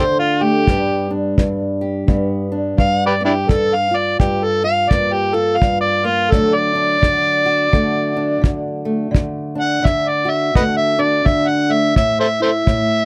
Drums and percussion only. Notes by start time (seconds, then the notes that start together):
0.67 kick
1.38 kick
2.08 kick
2.78 kick
3.49 kick
4.20 kick
4.91 kick
5.62 kick
6.32 kick
7.03 kick
7.73 kick
8.44 kick
9.15 kick
9.85 kick
10.55 kick
11.26 kick
11.96 kick
12.67 kick